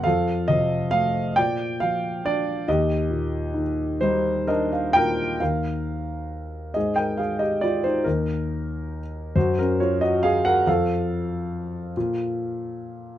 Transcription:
grand piano
0.04 F2 A4 F5
0.48 C3 D#5
0.91 A3 F5
1.36 A#2 D5 G5
1.80 F3 F5
2.25 D4 D5
2.68 D#2 G4 D#5
3.10 A#2
3.54 D#3
4.01 G3 D#4 C5
4.47 D4 A#4 D#5
4.72 F5
4.93 A#2 A#4 G5
5.40 D#2 A#4 F5
6.74 G#2 G#4 D#5
6.96 A#4 G5
7.17 G#4 F5
7.39 G4 D#5
7.61 F4 D5
7.84 D#4 C5
8.04 D#2 D#4 A#4
9.35 F#2 F#4 C5
9.59 C#4 A#4
9.80 F4 C#5
10.01 F#4 D#5
10.23 G#4 F5
10.45 A#4 F#5
10.67 F2 A4 F5
11.97 A#2

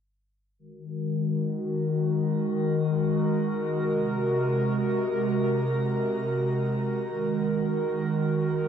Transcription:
analog synth pad
0.59 D#3 G#3 F#4 A#4
3.81 C3
7.03 D#3 G#3 F#4 A#4

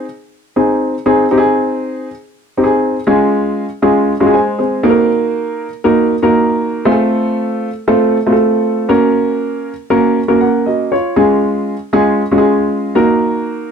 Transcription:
grand piano
0.56 C4 D#4 G#4
1.06 C4 D#4 G#4
1.31 C4 D#4 G4
1.38 G#4
2.57 C4 D#4 G4
2.64 G#4
3.07 G#3 C#4 F4 G#4
3.82 G#3 C#4 F4 G#4
4.20 G#3 C#4 F4 F#4
4.26 G#4
4.34 C5 G#5
4.59 C4 G#4
4.83 A#3 D#4 F#4 A4
4.90 A#4
5.84 A#3 D#4 F#4 A#4
6.22 A#3 D#4 F#4 A#4
6.85 A3 C4 F4 G#4
6.92 A4
7.88 A3 C4 F4 A4
8.26 A3 C4 F4 F#4
8.32 A4
8.89 A#3 C#4 F#4 A#4
9.90 A#3 C#4 F#4 A#4
10.28 A#3 C#4 F#4 A#4
10.41 A#4 F#5
10.66 F#4 D#5
10.92 F4 C#5
11.16 G#3 C#4 F4 G#4
11.93 G#3 C#4 F4 G#4
12.31 G#3 C#4 F4 F#4
12.38 G#4
12.95 A#3 D#4 F#4 A#4

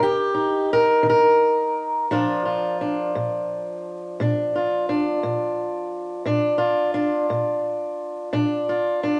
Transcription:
steel-string acoustic guitar
Already playing: D#4
0.00 D#3 G4
0.34 D#4
0.73 A#4
1.03 D#3
1.10 A#4
2.11 A#2 F3 D4 F4
2.45 F4
2.81 D4
3.15 A#2
4.20 A#2 D4
4.55 F4
4.89 D4
5.23 A#2
6.26 A#2 D4
6.58 F4
6.94 D4
7.30 A#2
8.33 A#2 D4
8.69 F4
9.03 D4

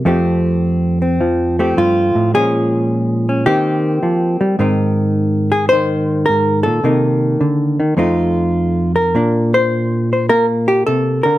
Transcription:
hollow-body jazz guitar
0.05 F2 F3 A3 C4 G4
1.02 C4
1.21 F3
1.59 A3 C4 G4
1.77 G2 F4
2.15 A2
2.34 A#2 F3 G#3 C#4 G#4
3.29 C#4
3.46 D#3 A#3 C4 G4
4.03 F3
4.41 G3
4.59 G#2 D#3 C4 D#4
5.52 G#4
5.69 D#3 C5
6.26 G#2 A#4
6.63 A#2 A4
6.84 C3 D#3 A#3 D#4
7.41 D3
7.80 D#3
7.97 F2 A3 C4 D#4 F4
8.96 A#4
9.15 A#2 A#3 D4
9.54 C5
10.13 C5
10.29 A#3 A#4
10.68 G4
10.87 C3 A4
11.23 D3 A#4

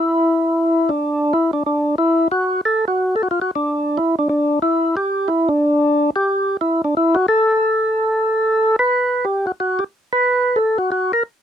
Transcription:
tonewheel organ
Already playing: E4
0.89 D4
1.33 E4
1.53 D4
1.66 D4
1.98 E4
2.32 F#4
2.65 A4
2.88 F#4
3.16 A4
3.23 F#4
3.31 F4
3.42 F#4
3.55 D4
3.97 E4
4.19 D4
4.29 D4
4.62 E4
4.97 G4
5.28 E4
5.49 D4
6.16 G4
6.61 E4
6.84 D4
6.97 E4
7.15 F#4
7.28 A4
8.79 B4
9.25 G4
9.47 F#4
9.60 F#4
9.79 G4
10.13 B4
10.56 A4
10.78 F#4
10.92 F#4
11.13 A#4

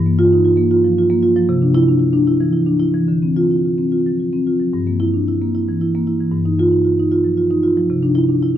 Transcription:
marimba
Already playing: G2
0.06 A#3
0.19 F4
0.33 D#4
0.45 F4
0.57 A#3
0.71 F4
0.84 F3
0.98 F4
1.10 A#3
1.23 F4
1.36 F3
1.49 C3
1.62 D4
1.75 E4
1.89 D4
1.99 E4
2.13 D4
2.27 E4
2.40 E3
2.53 E4
2.66 D4
2.80 E4
2.94 E3
3.08 D3
3.22 C4
3.36 F4
3.51 E4
3.65 F4
3.78 C4
3.92 F4
4.06 F3
4.20 F4
4.33 C4
4.47 F4
4.60 F3
4.73 G2
4.87 A#3
5.00 E4
5.14 D4
5.28 E4
5.42 A#3
5.55 E4
5.69 E3
5.81 E4
5.95 A#3
6.07 E4
6.20 E3
6.32 G2
6.45 D#4
6.59 F4
6.72 D#4
6.85 F4
6.99 D#4
7.12 F4
7.24 F3
7.37 F4
7.51 D#4
7.63 F4
7.77 F3
7.90 C3
8.03 D4
8.15 E4
8.28 D4
8.43 E4

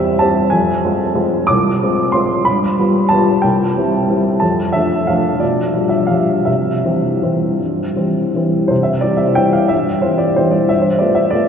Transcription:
upright piano
Already playing: E2 G3 C4 G4 E5
0.19 G3 C4 G4 A5
0.50 F2 G#5
0.85 G#3 C4 F4
1.15 G#3 C4 F4
1.47 C2 D6
1.83 G#3 C4 F4
2.12 G#3 C4 F4 C6
2.45 G2 B5
2.79 G3 B3 F4
3.09 G3 B3 F4 A5
3.42 C2 G5
3.77 G3 C4 E4
4.09 G3 C4 E4
4.40 F2 A5
4.73 F3 A3 D4 E5
5.07 F3 A3 D4 F5
5.40 B2 D5
5.73 F3 G3 D4
5.89 E5
6.07 F3 G3 D4 F5
6.45 C3 E5
6.85 E3 G3 C4
7.22 E3 G3 C4
7.60 G2
7.96 E3 G3 C4
8.35 E3 G3 C4
8.68 C3 C5
8.83 E5
9.01 E3 G3 C4 D5
9.17 E5
9.35 E3 G3 C4 G5
9.53 F5
9.68 G2 E5
10.02 E3 G3 C4 C5
10.18 D5
10.36 E3 G3 C4 C5
10.51 D5
10.69 G2 E5
10.82 C5
10.99 A3 B3 F4 D5
11.15 E5
11.30 A3 B3 F4 D5

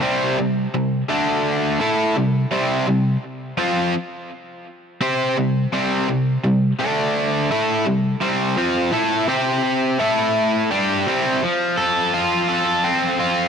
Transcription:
overdriven electric guitar
0.01 C3 G3 C4
0.39 C3 G3
0.74 C3 G3
1.09 D3 A3 D4
1.81 A3 E4 A4
2.17 C3 G3
2.51 C3 G3 C4
2.88 C3 G3
3.58 F3 C4 F4
5.01 C4 G4 C5
5.37 C3 G3
5.73 C3 G3 C4
6.09 C3 G3
6.44 C3 G3
6.79 D3 A3 D4
7.51 A3 E4 A4
7.86 C3 G3
8.21 C3 G3 C4
8.57 F3 C4 F4
8.92 A3 E4 A4
9.28 C4 G4 C5
9.99 A3 E4 A4
10.71 G3 D4 G4
11.07 C3 G3 C4
11.43 F3
11.77 A4
12.14 F4
12.48 A4
12.84 C4
13.20 F4

